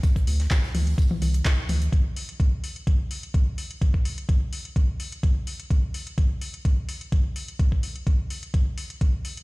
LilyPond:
<<
  \new Staff \with { instrumentName = "Analog synth bass" } { \clef bass \time 4/4 \key c \major \tempo 4 = 127 r8 d,8 r8 d,8 r8 c,8 r8 d,8 | r1 | r1 | r1 |
r1 | }
  \new DrumStaff \with { instrumentName = "Drums" } \drummode { \time 4/4 <hh bd tamb>16 <hh bd>16 <hho tamb>16 <hh sn>16 <hc hh bd sn tamb>16 sn16 <hho toml>16 hh16 <hh bd tamb>16 toml16 <hho tamb toml>16 hh16 <hc hh bd sn tamb>8 <hho tamb toml>16 hh16 | <hh bd>8 hho16 hh16 <hh bd>8 hho16 hh16 <hh bd>8 hho16 hh16 <hh bd>8 hho16 hh16 | <hh bd>16 bd16 hho16 hh16 <hh bd>8 hho16 hh16 <hh bd>8 hho16 hh16 <hh bd>8 hho16 hh16 | <hh bd>8 hho16 hh16 <hh bd>8 hho16 hh16 <hh bd>8 hho16 hh16 <hh bd>8 hho16 hh16 |
<hh bd>16 bd16 hho16 hh16 <hh bd>8 hho16 hh16 <hh bd>8 hho16 hh16 <hh bd>8 hho16 hh16 | }
>>